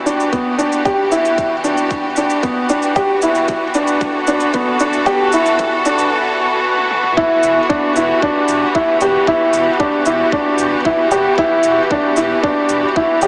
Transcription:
Already playing: string section E3 B3 E4 F#4
0.00 string section G4
0.06 felt piano D4, shaker
0.20 shaker
0.33 felt piano B3, kick, shaker
0.58 felt piano D4, shaker
0.72 shaker
0.85 felt piano G4, kick, shaker
1.11 felt piano E4, shaker
1.25 shaker
1.38 kick, shaker
1.64 felt piano D4, shaker
1.77 shaker
1.90 kick, shaker
2.16 felt piano D4, shaker
2.30 shaker
2.43 felt piano B3, kick, shaker
2.69 felt piano D4, shaker
2.82 shaker
2.96 felt piano G4, kick, shaker
3.22 felt piano E4, shaker
3.35 shaker
3.48 kick, shaker
3.74 felt piano D4, shaker
3.87 shaker
4.01 string section A4, kick, shaker
4.27 felt piano D4, shaker
4.40 shaker
4.53 felt piano B3, kick, shaker
4.80 felt piano D4, shaker
4.93 shaker
5.06 felt piano G4, kick, shaker
5.32 felt piano E4, shaker
5.46 shaker
5.59 kick, shaker
5.85 felt piano D4, shaker
5.98 shaker
6.77 high tom
6.91 mid tom
7.03 mid tom
7.17 felt piano E4, kick
7.43 sub bass E1, shaker
7.69 felt piano D4, kick
7.86 string section G4
7.96 sub bass E1, felt piano E4, shaker
8.22 felt piano D4, kick
8.48 sub bass E1, shaker
8.75 felt piano E4, kick
9.01 sub bass E1, felt piano G4, shaker
9.27 felt piano E4, kick
9.53 sub bass E1, shaker
9.80 felt piano D4, kick
10.06 sub bass E1, felt piano E4, shaker
10.32 felt piano D4, kick
10.58 sub bass E1, shaker
10.85 felt piano E4, kick
11.10 sub bass E1, felt piano G4, shaker
11.38 felt piano E4, kick
11.63 sub bass E1, shaker
11.91 felt piano D4, kick
12.16 sub bass E1, felt piano E4, shaker
12.43 felt piano D4, kick
12.69 sub bass E1, shaker
12.96 felt piano E4, kick
13.21 sub bass E1, felt piano G4, shaker

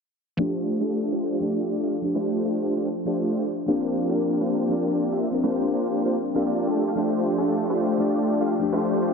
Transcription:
0.37 synth keys F3 A3 D4, supersaw synth A3 D4 F4 G4 C5
0.41 synth keys G4
0.80 supersaw synth A3 D4 F4 G4 A4
1.12 supersaw synth A3 D4 F4 G4 C5
1.40 synth keys F3 A3 D4, supersaw synth A3 D4 F4 G4 D5
1.44 synth keys G4
1.83 supersaw synth A3 D4 F4 G4 F5
2.02 synth keys F3 A3 D4 G4
2.15 supersaw synth A3 D4 F4 G4 C5
2.45 supersaw synth A3 D4 F4 G4 C5
2.77 supersaw synth A3 D4 F4 G4 C5
3.05 synth keys F3 A3 D4 G4, supersaw synth A3 D4 F4 G4 C5
3.66 synth keys F3 C4 D4 A#4, supersaw synth A#3 D4 F4 G4 C5
4.09 supersaw synth A#3 D4 F4 G4 A#4
4.41 supersaw synth A#3 D4 F4 G4 C5
4.69 synth keys F3 C4 D4 A#4, supersaw synth A#3 D4 F4 G4 D5
5.12 supersaw synth A#3 D4 F4 G4 E5
5.30 synth keys F3 C4 D4 A#4
5.43 supersaw synth A#3 D4 F4 G4 C5
5.74 supersaw synth A#3 D4 F4 G4 C5
6.05 supersaw synth A#3 D4 F4 G4 C5
6.34 synth keys F3 C4 D4 A#4, supersaw synth A#3 D4 F4 G4 E5
6.46 supersaw synth A#3 D4 F4 G4 D5
6.67 supersaw synth A3 D4 F4 G4 A4
6.88 supersaw synth A3 D4 F4 G4 F5
6.95 synth keys F3 A3 D4 G4, supersaw synth A3 D4 F4 G4 C5
7.38 supersaw synth A3 D4 F4 G4 A4
7.70 supersaw synth A3 D4 F4 G4 C5
7.98 synth keys F3 A3 D4 G4, supersaw synth A3 D4 F4 G4 D5
8.41 supersaw synth A3 D4 F4 G4 F5
8.59 synth keys F3 A3 D4
8.63 synth keys G4
8.72 supersaw synth A3 D4 F4 G4 C5
9.02 supersaw synth A3 D4 F4 G4 C5

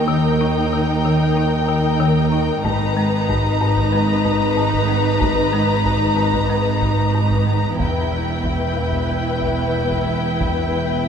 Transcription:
Already playing: double bass section D#2, cello section D#2, viola section D#4, violin section A#4 G5, synth texture A#4 D#5 G5
0.08 marimba D#3
0.41 marimba D#4
0.73 marimba D#3
1.05 marimba D#3
1.37 marimba D#4
1.68 marimba D#3
2.00 marimba D#3
2.32 marimba D#4
2.64 double bass section G#1, marimba G#2, cello section G#2, viola section D#4, violin section B4 A#5, synth texture B4 D#5 A#5, taiko
2.97 marimba G#3
3.29 marimba G#2, taiko
3.61 marimba G#2
3.77 taiko
3.93 marimba G#3
4.25 marimba G#2, taiko
4.57 marimba G#2
4.73 taiko
4.88 marimba G#3
5.20 marimba G#2, taiko
5.53 marimba G#3
5.85 marimba G#2, taiko
6.17 marimba G#2
6.34 taiko
6.50 marimba G#3
6.82 marimba G#2, taiko
7.14 marimba G#2
7.31 taiko
7.47 marimba G#3
7.79 double bass section E1, cello section E2, marimba E2, viola section E4, synth texture B4 E5 G5, violin section B4 G5, taiko
8.12 marimba E3
8.43 marimba E2, taiko
8.77 marimba E2
8.92 taiko
9.09 marimba E3
9.41 marimba E2, taiko
9.75 marimba E2
9.91 taiko
10.09 marimba E3
10.41 marimba E2, taiko
10.75 marimba E3

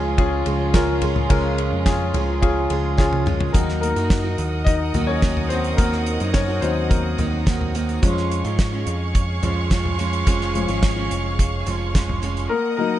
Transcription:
Already playing: picked electric bass C#2, grand piano C#3 C#4 F4 G#4, steel-string acoustic guitar F3 G#3 F4 G#4, string section G#3 C#4 F4
0.18 grand piano C#4 F4 G#4, kick, ride
0.46 picked electric bass C#2, steel-string acoustic guitar F3 G#3 F4 G#4, ride
0.73 steel-string acoustic guitar F3 G#3 F4 G#4, grand piano C#4 F4 A#4, kick, snare, ride
1.02 steel-string acoustic guitar F3 G#3 F4 G#4, floor tom, ride
1.16 floor tom
1.29 picked electric bass C#2, grand piano C#3 C#4 F4 A#4, steel-string acoustic guitar C#3 F3 G#3 F4 G#4, kick, ride
1.58 ride
1.72 picked electric bass F2
1.86 grand piano C#4 F4 G#4, kick, snare, ride
2.14 picked electric bass C#2, steel-string acoustic guitar F3 G#3 F4 G#4, floor tom, ride
2.42 grand piano C#4 F4 G#4, kick, ride
2.70 picked electric bass C#2, steel-string acoustic guitar F3 G#3 F4 G#4, ride
2.97 steel-string acoustic guitar F3 G#3 F4 G#4, grand piano C#4 F4 G#4, kick, snare
3.13 high tom
3.26 steel-string acoustic guitar F3 G#3 F4 G#4, mid tom
3.41 floor tom
3.53 picked electric bass D#2, steel-string acoustic guitar D#3 A#3 D#4 F#4, grand piano F#3 A#3 D#4 A#4, string section A#4 D#5 F#5 D#6, kick, closed hi-hat
3.69 snare
3.81 grand piano A#3 A#4, closed hi-hat
3.96 picked electric bass F#2, steel-string acoustic guitar A#3 D#4 F#4, closed hi-hat
4.10 kick, snare, closed hi-hat
4.24 steel-string acoustic guitar A#3 D#4 F#4
4.38 picked electric bass D#2, closed hi-hat
4.64 grand piano D#4 D#5, kick, closed hi-hat
4.94 picked electric bass D#2, steel-string acoustic guitar D#3 A#3 D#4 F#4, grand piano F#3 A#3 D#4, closed hi-hat, floor tom
5.07 grand piano C#4 C#5
5.22 steel-string acoustic guitar D#3 A#3 D#4 F#4, kick, snare, closed hi-hat
5.37 floor tom
5.49 steel-string acoustic guitar D#3 A#3 D#4, grand piano C4 C5, closed hi-hat
5.53 steel-string acoustic guitar F#4
5.64 closed hi-hat
5.77 picked electric bass D#2, steel-string acoustic guitar D#3 A#3 D#4 F#4, grand piano A#3 A#4, kick, closed hi-hat
5.92 snare
6.06 closed hi-hat
6.20 picked electric bass F#2, steel-string acoustic guitar A#3 D#4 F#4, closed hi-hat
6.33 grand piano C#4 C#5, kick, snare, closed hi-hat
6.48 steel-string acoustic guitar A#3 D#4 F#4
6.61 picked electric bass D#2, grand piano F#3 A#3 C4 D#4 C5, closed hi-hat
6.89 grand piano A#3 A#4, kick, closed hi-hat
7.18 picked electric bass D#2, steel-string acoustic guitar D#3 A#3 D#4 F#4, closed hi-hat, floor tom
7.46 steel-string acoustic guitar D#3 A#3 D#4 F#4, kick, snare, closed hi-hat
7.61 floor tom
7.74 steel-string acoustic guitar D#3 A#3 D#4 F#4, closed hi-hat
7.89 closed hi-hat
8.02 picked electric bass F2, grand piano F3 G#3 C#4, steel-string acoustic guitar F3 G#3 C#4 F4, string section G#4 C#5 F5 C#6, kick, closed hi-hat
8.17 snare
8.31 closed hi-hat
8.44 picked electric bass G#2, steel-string acoustic guitar G#3 C#4 F4, closed hi-hat
8.59 kick, snare, closed hi-hat
8.72 steel-string acoustic guitar G#3 C#4 F4
8.87 picked electric bass F2, closed hi-hat
9.15 kick, closed hi-hat
9.42 picked electric bass F2, steel-string acoustic guitar F3 G#3 C#4 F4, closed hi-hat, floor tom
9.70 steel-string acoustic guitar F3 G#3 C#4 F4, kick, snare, closed hi-hat
9.85 floor tom
9.98 steel-string acoustic guitar F3 G#3 C#4 F4, closed hi-hat
10.13 closed hi-hat
10.26 picked electric bass F1, steel-string acoustic guitar F3 G#3 C#4 F4, kick, closed hi-hat
10.41 snare
10.55 grand piano F3 G#3 C#4, closed hi-hat
10.68 picked electric bass G#1, steel-string acoustic guitar G#3 C#4 F4, closed hi-hat
10.83 kick, snare, closed hi-hat
10.96 steel-string acoustic guitar G#3 C#4 F4
11.11 picked electric bass F1, closed hi-hat
11.39 kick, closed hi-hat
11.66 picked electric bass F1, steel-string acoustic guitar F3 G#3 C#4 F4, closed hi-hat
11.94 steel-string acoustic guitar F3 G#3 C#4 F4, kick, snare, closed hi-hat
12.09 floor tom
12.22 steel-string acoustic guitar F3 G#3 C#4 F4, closed hi-hat
12.37 closed hi-hat
12.49 grand piano A#3 A#4, string section A#4 D#5 F#5 D#6
12.77 grand piano F#3 A#3 D#4 A#4

